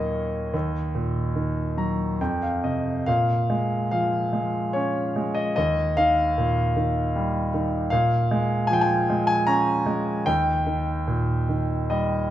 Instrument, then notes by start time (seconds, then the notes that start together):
grand piano
Already playing: D#2 A#2 D#3 F#3 A#3 C#5 D#5
0.54 D#2
0.95 A#2
1.36 D#3
1.77 F#3 A#5
2.21 F2 G5
2.42 F5
2.64 C3 D#5
3.06 A#2 F5
3.50 G#3
3.91 F3 F5
4.33 G#3
4.73 C#4 C#5
5.16 G#3
5.35 D#5
5.56 D#2 D#5
5.97 D#3 F5
6.38 A#2
6.76 D#3
7.16 G3
7.54 D#3
7.90 A#2 F5
8.31 G#3
8.67 F3 G#5
8.73 G5
8.81 G#5
9.10 G#3
9.27 G#5
9.47 C#4 A#5
9.86 G#3
10.26 D#2 G5
10.67 D#3
11.08 A#2
11.49 D#3
11.90 G3 D#5